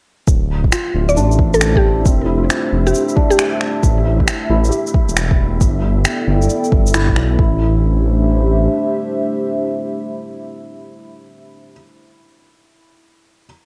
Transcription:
0.27 D1 A3 E4 E5, kick, shaker
0.43 D4
0.48 G4
0.64 C5, kick
0.72 F4, finger snap, shaker
0.78 E5
0.94 D1
1.09 D5, shaker
1.16 A1 D4, shaker
1.32 shaker
1.39 kick
1.54 A4, shaker
1.61 finger snap, shaker
1.76 G4, kick
2.05 F1 C4, kick, shaker
2.25 E4
2.38 F4
2.43 E5
2.50 finger snap, shaker
2.72 F1
2.87 G4, shaker
2.95 shaker
3.09 shaker
3.16 D4, kick
3.30 G4, shaker
3.39 finger snap, shaker
3.61 finger snap
3.83 A1, kick, shaker
4.20 kick
4.28 finger snap, shaker
4.50 A1 E4
4.65 shaker
4.69 G4, shaker
4.87 shaker
4.94 kick
5.09 E1, shaker
5.17 finger snap, shaker
5.31 kick
5.60 G1 B3, kick, shaker
5.75 E4 A4 D5 G5
6.05 finger snap, shaker
6.28 G1
6.42 shaker
6.50 shaker
6.64 shaker
6.72 G1, kick
6.87 shaker
6.94 E4, finger snap, shaker
7.09 kick
7.16 B1, finger snap
7.39 A1 A3 E4, kick
7.47 D4
7.55 G4
7.59 C5
7.65 E5

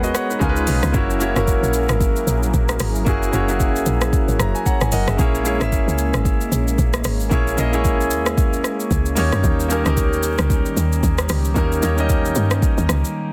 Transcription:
Already playing: D#2 G#3 B3 C#4 F#4 A#4 B4 C#5 F#5
0.03 F#4 D#5, shaker
0.15 C#5 F#5, cross-stick, shaker
0.30 D#4 B4, shaker
0.39 C#2 C#3 G#3 C#4 D#4 F4 A#4 G#5, kick, shaker
0.49 B4
0.56 shaker
0.67 B1 B5, open hi-hat, shaker
0.83 C#2, cross-stick, shaker
0.92 F#1 F#3 A#3 C#4 E4 F#4 G#4 A#4 C#5, kick, shaker
1.10 shaker
1.19 A#3 C#4 E4 F#4 C#5, shaker
1.34 F#1 A#3 C#4 E4 F#4 A#4, cross-stick, shaker
1.48 kick, shaker
1.63 A#1, shaker
1.73 shaker
1.89 G#1, cross-stick, shaker
2.00 kick, shaker
2.16 shaker
2.27 A#1, shaker
2.43 shaker
2.54 A#1, kick, shaker
2.69 cross-stick, shaker
2.80 G#1, cross-stick, open hi-hat, shaker
2.95 shaker
3.05 F#1 A#3 C#4 E4 F#4 G#4, kick, shaker
3.23 shaker
3.31 F#1 A#3 C#4 E4 F#4 C#5, shaker
3.47 A#3 C#4 E4 F#4 G#4, shaker
3.60 kick, shaker
3.76 shaker
3.86 A#1, shaker
4.01 cross-stick, shaker
4.13 kick, shaker
4.28 G#1, shaker
4.39 F#1 A#5, cross-stick, shaker
4.55 G#5, shaker
4.66 C#5 F#5 A#5, kick, shaker
4.81 G#1 G#5, cross-stick, shaker
4.92 F#1 A#4 D#5 F#5, open hi-hat, shaker
5.08 F#1 G#4 E5, cross-stick, shaker
5.17 A#1 G#3 A#3 C#4 E4 G#4 C#5, kick, shaker
5.35 shaker
5.44 A#3 C#4 E4 G#4 C#5, shaker
5.59 G#1 A#3 C#4 E4 G#4 E5, cross-stick, shaker
5.72 kick, shaker
5.87 C#2, shaker
5.98 shaker
6.14 G#1, cross-stick, shaker
6.25 kick, shaker
6.41 shaker
6.52 A#1, shaker
6.68 shaker
6.78 A#1, kick, shaker
6.93 cross-stick, shaker
7.04 G#1, cross-stick, open hi-hat, shaker
7.20 shaker
7.29 A#1 A#3 C#4 E4 G#4 C#5, kick, shaker
7.47 shaker
7.56 A#1 A#3 C#4 E4 G#4 D#5, shaker
7.71 A#3 C#4 E4 G#4 C#5, shaker
7.85 kick, shaker
8.01 shaker
8.11 D#2, shaker
8.26 cross-stick, shaker
8.38 kick, shaker
8.53 shaker
8.64 cross-stick, shaker
8.80 shaker
8.91 C#2, kick, shaker
9.06 shaker
9.15 D#2 D#3 G3 A#3 C#4 D#4 G4 C#5, open hi-hat, shaker
9.32 F#2, cross-stick, shaker
9.44 D#2, kick, shaker
9.60 shaker
9.68 A#3 C#4 D#4 G4 A#4, shaker
9.84 C#2 A#3 C#4 D#4 G4 A#4, cross-stick, shaker
9.97 kick, shaker
10.12 D#2, shaker
10.23 shaker
10.38 C#2, cross-stick, shaker
10.50 kick, shaker
10.66 shaker
10.77 D#2, shaker
10.92 shaker
11.03 D#2, kick, shaker
11.18 cross-stick, shaker
11.29 C#2, cross-stick, open hi-hat, shaker
11.45 shaker
11.54 D#2 A#3 C#4 D#4 G4 A#4, kick, shaker
11.72 shaker
11.81 D#2 A#3 C#4 D#4 G4 C#5, shaker
11.96 A#3 C#4 D#4 G4 D#5, shaker
12.09 kick, shaker
12.25 shaker
12.35 G2, shaker
12.51 cross-stick, shaker
12.62 kick, shaker
12.78 D#2, shaker
12.89 C#2, cross-stick, shaker
13.05 shaker

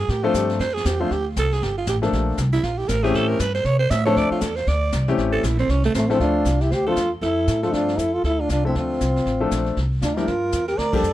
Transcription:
0.00 G#4
0.08 A2 G4, brush sweep, kick, snare
0.23 F3 A3 C4 D4 F4 A4
0.34 G2 G4, kick, snare, hi-hat pedal
0.49 snare
0.59 F2 C5, brush sweep, kick, snare
0.69 snare
0.74 G#4, snare
0.85 E2 G4, kick, snare, hi-hat pedal
1.00 F3 A3 C4 D4 F4 C5
1.10 D2 G4, brush sweep, kick, snare
1.36 C2 A4, kick, snare, hi-hat pedal
1.52 G#4, snare
1.62 G1 G4, brush sweep, kick, snare
1.78 F4
1.87 A1 G4, kick, snare, hi-hat pedal
2.02 F3 A3 A#3 D4 A4, snare
2.13 A#1, brush sweep, kick, snare
2.37 C2, kick, snare, hi-hat pedal
2.53 E4, snare
2.63 A#1 F4, brush sweep, kick, snare
2.78 G4
2.88 A1 A#4, kick, snare, hi-hat pedal
3.03 E3 A3 C4 C#4 G4 G#4, snare
3.14 A2 A4, brush sweep, kick, snare
3.29 A#4
3.39 G2 B4, kick, snare, hi-hat pedal
3.54 C5, snare
3.64 C3 C#5, brush sweep, kick, snare
3.79 C5
3.90 A2 E5, kick, snare, hi-hat pedal
4.05 F3 A3 C4 D4 A4 C#5, snare
4.16 D2 D5, brush sweep, kick, snare
4.30 F4, muted upright bass stroke
4.41 E2 A4, kick, snare, hi-hat pedal
4.56 C5, snare
4.67 D2 D5, brush sweep, kick, snare
4.92 C2, kick, snare, hi-hat pedal
5.08 E3 A3 C4 C#4 G4, snare
5.18 A1, brush sweep, kick, snare
5.33 A4
5.43 A#1 E4, kick, snare, hi-hat pedal
5.59 C4, snare
5.69 C2 C#4, brush sweep, kick, snare
5.83 A3, snare
5.94 A1 A3 C4, kick, snare, hi-hat pedal
6.10 F3 A3 C4 D4 E4 A4, snare
6.20 D2 D4 F4, brush sweep, kick, snare
6.45 C2, kick, snare, hi-hat pedal
6.61 E4 G4, snare
6.70 D2 G4 C5, brush sweep, kick, snare
6.86 F3 A3 C4 D4 F4 A4
6.96 E2, kick, snare, hi-hat pedal
7.21 F2 E4 A4, brush sweep, kick, snare
7.47 A2, kick, snare, hi-hat pedal
7.63 F3 A3 C4 D4 F4 A4, snare
7.72 G2 D4 F4, brush sweep, kick, snare
7.88 snare
7.98 F2 E4 A4, kick, snare, hi-hat pedal
8.13 F4 A4
8.24 D2 E4 A4, brush sweep, kick, snare
8.40 D4 F4
8.49 C2 D4 F4, kick, snare, hi-hat pedal
8.64 F3 A3 C4 D4 E4 A4
8.75 D2 C4 F4, brush sweep, kick, snare
9.01 C2, kick, snare, hi-hat pedal
9.16 snare
9.26 A1, brush sweep, kick, snare
9.40 F3 A3 C4 D4 A4
9.51 A#1, kick, snare, hi-hat pedal
9.66 snare
9.77 C2, brush sweep, kick, snare
10.02 D2 D4 F4, kick, snare, hi-hat pedal
10.14 F3 G3 A#3 D4 D#4 E4 F4 G4 A#4, snare
10.27 G2 F4 A#4, brush sweep, kick, snare
10.52 E2, kick, snare, hi-hat pedal
10.68 G4 A#4, snare
10.78 D2 A#4 D5, brush sweep, kick, snare
10.93 F3 G3 A#3 D4 G4 A4 D5, kick, crash
11.03 F2, hi-hat pedal

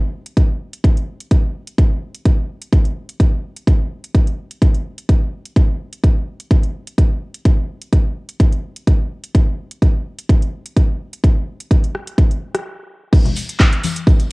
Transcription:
0.26 closed hi-hat
0.37 kick, closed hi-hat
0.73 closed hi-hat
0.84 kick, closed hi-hat
0.97 closed hi-hat
1.20 closed hi-hat
1.31 kick, closed hi-hat
1.67 closed hi-hat
1.78 kick, closed hi-hat
2.15 closed hi-hat
2.26 kick, closed hi-hat
2.62 closed hi-hat
2.73 kick, closed hi-hat
2.85 closed hi-hat
3.09 closed hi-hat
3.20 kick, closed hi-hat
3.56 closed hi-hat
3.67 kick, closed hi-hat
4.04 closed hi-hat
4.15 kick, closed hi-hat
4.27 closed hi-hat
4.51 closed hi-hat
4.62 kick, closed hi-hat
4.75 closed hi-hat
4.98 closed hi-hat
5.09 kick, closed hi-hat
5.46 closed hi-hat
5.56 kick, closed hi-hat
5.93 closed hi-hat
6.04 kick, closed hi-hat
6.40 closed hi-hat
6.51 kick, closed hi-hat
6.64 closed hi-hat
6.87 closed hi-hat
6.98 kick, closed hi-hat
7.35 closed hi-hat
7.46 kick, closed hi-hat
7.82 closed hi-hat
7.93 kick, closed hi-hat
8.29 closed hi-hat
8.40 kick, closed hi-hat
8.53 closed hi-hat
8.76 closed hi-hat
8.87 kick, closed hi-hat
9.24 closed hi-hat
9.35 kick, closed hi-hat
9.71 closed hi-hat
9.82 kick, closed hi-hat
10.18 closed hi-hat
10.29 kick, closed hi-hat
10.42 closed hi-hat
10.66 closed hi-hat
10.76 kick, closed hi-hat
11.13 closed hi-hat
11.24 kick, closed hi-hat
11.60 closed hi-hat
11.71 kick, closed hi-hat
11.84 closed hi-hat
11.95 cross-stick
12.07 closed hi-hat
12.18 kick, closed hi-hat
12.31 closed hi-hat
12.55 cross-stick, closed hi-hat
13.13 kick, crash, tambourine, high conga, cabasa
13.25 closed hi-hat, tambourine, low conga, cabasa
13.35 open hi-hat, tambourine, cabasa
13.49 closed hi-hat, tambourine, cabasa
13.60 kick, clap, cabasa
13.73 closed hi-hat
13.83 open hi-hat, tambourine, high conga, cabasa
13.96 closed hi-hat, tambourine, cabasa
14.07 kick, tambourine, cabasa
14.20 closed hi-hat, tambourine, cabasa

